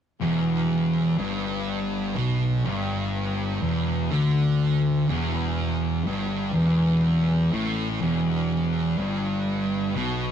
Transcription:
0.20 fingered electric bass E1, distorted electric guitar E2
1.18 fingered electric bass G1, distorted electric guitar G2
2.15 fingered electric bass B1, distorted electric guitar B2
2.65 fingered electric bass G1, distorted electric guitar G2
3.62 fingered electric bass E1, distorted electric guitar E2
4.11 fingered electric bass D2, distorted electric guitar D3
5.09 fingered electric bass E1, distorted electric guitar E2
6.05 fingered electric bass G1, distorted electric guitar G2
6.53 fingered electric bass E1, distorted electric guitar E2
7.52 fingered electric bass A1, distorted electric guitar A2
8.01 fingered electric bass E1, distorted electric guitar E2
8.98 fingered electric bass G1, distorted electric guitar G2
9.95 fingered electric bass B1, distorted electric guitar B2

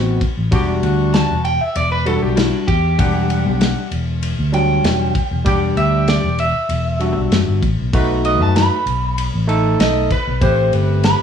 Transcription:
Already playing: fingered electric bass A1, tine electric piano B3 C4 F#4
0.21 kick, ride
0.37 fingered electric bass A1
0.51 fingered electric bass E1, tine electric piano G3 D4 F#4, horn section D4 F#4 G4, kick, ride
0.82 fingered electric bass D2, horn section D4 F#4, ride
1.14 clean electric guitar A5, snare, ride
1.30 fingered electric bass E1
1.45 clean electric guitar G5, ride
1.61 clean electric guitar E5
1.75 fingered electric bass E1, clean electric guitar D5, ride
1.92 clean electric guitar B4
2.06 tine electric piano G3 D4 F#4, clean electric guitar A4, ride
2.22 fingered electric bass B1, clean electric guitar G4
2.36 clean electric guitar E4, snare, ride
2.53 clean electric guitar D4
2.68 fingered electric bass E2, clean electric guitar G4, kick, ride
2.98 fingered electric bass E1, tine electric piano G3 D4 F#5, horn section D4 F#4 G4, kick, ride
3.29 horn section D4 F#5, ride
3.46 fingered electric bass B1
3.61 snare, ride
3.91 fingered electric bass E1, ride
4.23 ride
4.39 fingered electric bass D2
4.52 tine electric piano F#3 G3 D4, clean electric guitar G5, ride
4.84 fingered electric bass E1, snare, ride
5.15 kick, ride
5.31 fingered electric bass E1
5.45 tine electric piano G3 D4 G4, horn section D4 F#4 G4, kick, ride
5.76 fingered electric bass D2, horn section D4 G4, clean electric guitar E5, ride
6.08 clean electric guitar D5, snare, ride
6.24 fingered electric bass E1
6.39 clean electric guitar E5, ride
6.69 fingered electric bass E1, ride
7.00 tine electric piano G3 D4 F#4, ride
7.17 fingered electric bass B1
7.31 fingered electric bass F#1, snare, ride
7.48 fingered electric bass G1
7.62 fingered electric bass A1, kick, ride
7.79 fingered electric bass B1
7.93 fingered electric bass B1, tine electric piano A3 D#4 F#4, horn section D#4 A4 B4, kick, ride
8.24 horn section D#4 A4 B4, clean electric guitar D#5, ride
8.41 fingered electric bass F#2, clean electric guitar A5
8.56 clean electric guitar B5, snare, ride
8.86 fingered electric bass B1, ride
9.18 ride
9.34 fingered electric bass A1
9.47 tine electric piano A3 D#4 A4, ride
9.79 fingered electric bass B1, clean electric guitar D#5, snare, ride
10.11 clean electric guitar B4, kick, ride
10.27 fingered electric bass B1
10.41 fingered electric bass A1, tine electric piano A3 C4 G4, horn section C4 G4 B4, clean electric guitar C5, kick, ride
10.72 fingered electric bass G1, horn section G4 B4, ride
11.04 clean electric guitar B5, snare, ride

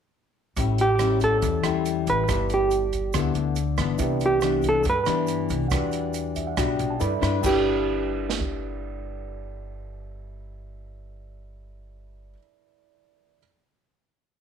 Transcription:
0.56 upright bass A1, nylon-string guitar A2 G3 C#4 E4, kick, closed hi-hat, shaker
0.78 hollow-body jazz guitar G4, closed hi-hat, shaker
0.99 nylon-string guitar G3 C#4 E4, cross-stick, closed hi-hat, shaker
1.20 hollow-body jazz guitar A4, kick, closed hi-hat, shaker
1.42 upright bass E2, nylon-string guitar E3, kick, closed hi-hat, shaker
1.63 upright bass E2, nylon-string guitar G3 C#4 E4, cross-stick, closed hi-hat, shaker
1.85 closed hi-hat, shaker
2.07 upright bass A1, hollow-body jazz guitar B4, kick, closed hi-hat, shaker
2.28 upright bass G1, nylon-string guitar G3 B3 E4 A4, kick, cross-stick, closed hi-hat, shaker
2.49 closed hi-hat, shaker
2.54 hollow-body jazz guitar G4
2.71 closed hi-hat, shaker
2.93 kick, closed hi-hat, shaker
3.13 upright bass D2, nylon-string guitar D3 B3 E4 A4, kick, cross-stick, closed hi-hat, shaker
3.34 upright bass D2, closed hi-hat, shaker
3.56 closed hi-hat, shaker
3.77 upright bass G1, nylon-string guitar E3 B3 D4, kick, cross-stick, closed hi-hat, shaker
3.98 upright bass C2, nylon-string guitar C3, grand piano E4 G4 B4, kick, closed hi-hat, shaker
4.04 grand piano D5
4.20 closed hi-hat, shaker
4.26 hollow-body jazz guitar G4
4.41 nylon-string guitar E3 B3 D4, cross-stick, closed hi-hat, shaker
4.62 kick, closed hi-hat, shaker
4.69 hollow-body jazz guitar A4
4.83 nylon-string guitar G2, upright bass G2, kick, closed hi-hat, shaker
4.90 hollow-body jazz guitar B4
5.05 upright bass G2, nylon-string guitar E3 B3 D4, grand piano E4 G4 B4 E5, cross-stick, closed hi-hat, shaker
5.27 closed hi-hat, shaker
5.49 upright bass C2, kick, closed hi-hat, shaker
5.68 upright bass E2, nylon-string guitar E3 G3 D4 F#4, grand piano B4 F#5, kick, cross-stick, closed hi-hat, shaker
5.74 grand piano D5
5.91 closed hi-hat, shaker
6.13 closed hi-hat, shaker
6.35 grand piano E5, kick, closed hi-hat, shaker
6.47 grand piano F#5
6.57 upright bass B1, nylon-string guitar B2 G3 D4 F#4, grand piano G5, kick, cross-stick, closed hi-hat, shaker
6.79 upright bass B1, closed hi-hat, shaker
6.90 grand piano A5
7.00 upright bass G2, nylon-string guitar D4 E4 B4, grand piano E4 A4 B4 D5 B5, closed hi-hat, shaker
7.21 upright bass G2, nylon-string guitar D4 E4 B4, kick, cross-stick, closed hi-hat, shaker
7.39 nylon-string guitar G3, grand piano E4 A4
7.43 upright bass G1, nylon-string guitar D4 E4, hollow-body jazz guitar G4, grand piano B4, kick, crash, shaker
7.47 nylon-string guitar B4, grand piano D5
8.30 snare
8.40 kick

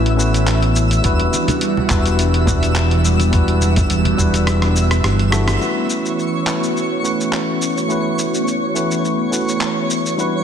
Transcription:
Already playing: fingered electric bass A1, analog synth pad E3 A3 B3 C#4 E4, tine electric piano A3 C#4 E4 F#4 B4, synth texture E5 E6
0.06 closed hi-hat
0.17 tine electric piano A3 C#4 E4 F#4 B4, shaker
0.34 closed hi-hat, shaker
0.47 clap, closed hi-hat, shaker
0.62 closed hi-hat
0.76 shaker
0.91 closed hi-hat, shaker
1.01 fingered electric bass E1, analog synth pad E3 G3 B3 D4 F#4, tine electric piano G3 D4 E4 F#4, kick, closed hi-hat, shaker
1.06 tine electric piano B4
1.20 closed hi-hat
1.34 high conga, shaker
1.48 closed hi-hat, low conga, shaker
1.61 closed hi-hat, shaker
1.77 low conga
1.88 fingered electric bass E1, tine electric piano G3 D4 E4 F#4 B4, kick, clap, shaker
2.06 closed hi-hat, shaker
2.19 closed hi-hat, shaker
2.34 closed hi-hat
2.45 tine electric piano G3 D4 E4 F#4 B4, kick, low conga, shaker
2.63 closed hi-hat, shaker
2.75 clap, closed hi-hat, shaker
2.91 closed hi-hat
3.05 shaker
3.20 closed hi-hat, high conga, shaker
3.30 tine electric piano G3 D4 E4 F#4, kick, closed hi-hat, shaker
3.35 tine electric piano B4
3.48 closed hi-hat
3.61 high conga, shaker
3.76 kick, closed hi-hat, low conga, shaker
3.90 fingered electric bass E1, closed hi-hat, shaker
4.05 closed hi-hat, low conga
4.17 fingered electric bass E1, tine electric piano G3 D4 E4 F#4 B4, kick, shaker
4.34 closed hi-hat, high conga, shaker
4.47 cross-stick, closed hi-hat, shaker
4.62 cross-stick, closed hi-hat
4.76 shaker
4.91 cross-stick, closed hi-hat, shaker
5.04 fingered electric bass G1, cross-stick, closed hi-hat, shaker
5.19 closed hi-hat
5.30 tine electric piano G3 D4 E4 F#4 A4, cross-stick, shaker
5.47 cross-stick, closed hi-hat, high conga, shaker
5.58 analog synth pad E3 A3 B3 C#4 F#4, tine electric piano A3 C#4 E4 F#4, synth texture C#5, shaker
5.62 tine electric piano B4, synth texture C#6
5.90 shaker
6.06 shaker
6.19 shaker
6.46 tine electric piano A3 C#4 E4 F#4 B4, clap, shaker
6.63 shaker
6.77 shaker
7.03 tine electric piano A3 C#4 E4 F#4 B4, shaker
7.21 shaker
7.33 clap, shaker
7.62 shaker
7.77 shaker
7.88 tine electric piano A3 C#4 E4 F#4, shaker
7.92 tine electric piano B4
8.19 shaker
8.34 shaker
8.47 shaker
8.74 tine electric piano A3 C#4 E4 F#4 B4, shaker
8.91 shaker
9.05 shaker
9.31 tine electric piano A3 C#4 E4 F#4 B4, shaker
9.49 shaker
9.61 clap, shaker
9.90 shaker
10.06 shaker
10.16 tine electric piano G3 D4 E4 F#4, analog synth pad G3 D4 F#4, shaker
10.20 tine electric piano B4

